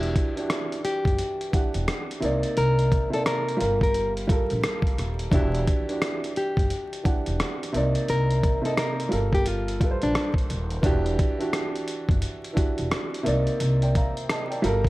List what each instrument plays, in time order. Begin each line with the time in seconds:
Already playing: upright bass E1, upright piano E3 D4 F#4 G4, nylon-string guitar E4
0.03 closed hi-hat
0.16 kick, closed hi-hat
0.36 upright piano E3 D4 F#4, closed hi-hat
0.40 upright piano G4
0.50 cross-stick, closed hi-hat
0.72 closed hi-hat
0.85 nylon-string guitar G4, closed hi-hat
1.05 upright bass F#1, kick, closed hi-hat
1.18 closed hi-hat
1.41 closed hi-hat
1.51 upright piano E3 D4 F#5, kick, closed hi-hat
1.55 upright piano G4
1.74 upright bass E1, closed hi-hat
1.88 cross-stick, closed hi-hat
2.11 closed hi-hat
2.20 upright bass C2, upright piano C3 A#3 D#4, closed hi-hat
2.25 upright piano D5
2.43 closed hi-hat
2.57 upright bass C2, nylon-string guitar A#4, closed hi-hat
2.79 closed hi-hat
2.92 kick, closed hi-hat
3.10 upright piano C3 A#3 D#4, nylon-string guitar A4, closed hi-hat
3.14 upright piano D5
3.26 nylon-string guitar A#4, cross-stick, closed hi-hat
3.48 closed hi-hat
3.57 upright bass G1, upright piano G3 F4 G4, closed hi-hat
3.61 upright piano A#4
3.81 nylon-string guitar A#4, kick, closed hi-hat
3.94 closed hi-hat
4.17 closed hi-hat
4.27 upright piano G3 F4 A4, kick, closed hi-hat
4.32 upright piano A#4
4.50 upright bass A#1, closed hi-hat
4.63 cross-stick, closed hi-hat
4.82 kick
4.87 closed hi-hat
4.98 upright bass D#1, cross-stick, closed hi-hat
5.19 closed hi-hat
5.31 upright bass E1, upright piano E3 D4 F#4, nylon-string guitar E4, kick, closed hi-hat
5.35 upright piano G4
5.55 closed hi-hat
5.67 kick, closed hi-hat
5.88 upright piano E3 D4 F#4, closed hi-hat
5.92 upright piano G4
6.02 cross-stick, closed hi-hat
6.24 closed hi-hat
6.36 nylon-string guitar G4, closed hi-hat
6.57 upright bass F#1, kick, closed hi-hat
6.70 closed hi-hat
6.93 closed hi-hat
7.03 upright piano E3 D4 F#5, kick, closed hi-hat
7.07 upright piano G4
7.26 upright bass E1, closed hi-hat
7.40 cross-stick, closed hi-hat
7.63 closed hi-hat
7.73 upright bass C2, upright piano C3 A#3 D#4, closed hi-hat
7.77 upright piano D5
7.95 closed hi-hat
8.08 upright bass C2, nylon-string guitar A#4, closed hi-hat
8.30 closed hi-hat
8.43 kick, closed hi-hat
8.62 upright piano C3 A#3 D#4, nylon-string guitar A4, closed hi-hat
8.66 upright piano D#5
8.77 nylon-string guitar A#4, cross-stick, closed hi-hat
9.00 closed hi-hat
9.09 upright bass G1, upright piano G3 F4 A4, closed hi-hat
9.13 upright piano A#4
9.33 nylon-string guitar G4, kick, closed hi-hat
9.46 nylon-string guitar F4, closed hi-hat
9.68 closed hi-hat
9.80 upright piano G3 F4 A4, kick, closed hi-hat
9.84 upright piano B4
9.91 upright piano C5
10.02 upright bass A#1, nylon-string guitar D4, closed hi-hat
10.15 cross-stick, closed hi-hat
10.34 kick
10.38 closed hi-hat
10.50 upright bass D#1, closed hi-hat
10.70 closed hi-hat
10.82 upright bass E1, upright piano E3 D4 F#4, kick, closed hi-hat
10.86 upright piano G4
11.06 closed hi-hat
11.19 kick, closed hi-hat
11.38 upright piano E3 D4 F#4 G4, closed hi-hat
11.53 cross-stick, closed hi-hat
11.76 closed hi-hat
11.88 closed hi-hat
12.09 upright bass F#1, kick, closed hi-hat
12.22 closed hi-hat
12.44 closed hi-hat
12.53 upright piano E3 D4 F#4
12.57 upright piano G4, kick, closed hi-hat
12.78 upright bass E1, closed hi-hat
12.91 cross-stick, closed hi-hat
13.14 closed hi-hat
13.23 upright bass C2, upright piano C3 A#3 D#4, closed hi-hat
13.27 upright piano D5
13.47 closed hi-hat
13.60 upright bass C2, closed hi-hat
13.82 upright piano D5 G5, closed hi-hat
13.95 upright piano F5 A#5, kick, closed hi-hat
14.17 closed hi-hat
14.29 upright piano D#5 A5, cross-stick, closed hi-hat
14.50 upright piano D5 G5, closed hi-hat
14.62 upright bass G1, upright piano G3 F4 A4, closed hi-hat
14.66 upright piano A#4
14.85 kick